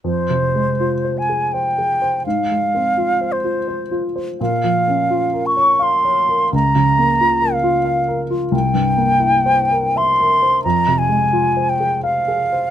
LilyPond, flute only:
\new Staff \with { instrumentName = "Flute" } { \time 3/4 \key f \minor \tempo 4 = 84 c''4. aes''8 g''4 | f''4. c''4 r8 | f''4. des'''8 c'''4 | bes''4. f''4 r8 |
g''2 c'''4 | bes''8 aes''4 g''8 f''4 | }